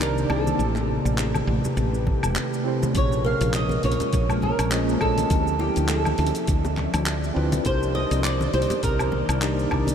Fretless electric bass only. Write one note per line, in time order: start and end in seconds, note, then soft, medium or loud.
0.00 0.24 C2 medium
0.30 0.52 C2 medium
0.59 0.98 A1 medium
1.05 1.42 A1 medium
1.47 1.60 A1 medium
1.77 2.16 A1 medium
2.23 2.36 E1 loud
2.95 3.33 A#1 medium
3.41 3.77 A#1 loud
3.84 3.95 A#1 medium
4.13 4.51 A#1 medium
4.59 4.95 A#1 loud
5.01 5.23 A#1 medium
5.30 5.69 D2 medium
5.77 6.13 D2 medium
6.19 6.30 D2 loud
6.48 6.86 D2 medium
6.94 7.30 D2 loud
7.36 7.58 D2 medium
7.66 8.04 C2 medium
8.11 8.48 C2 medium
8.54 8.66 C2 loud
8.83 9.22 C2 medium
9.29 9.65 C2 loud
9.72 9.94 C2 medium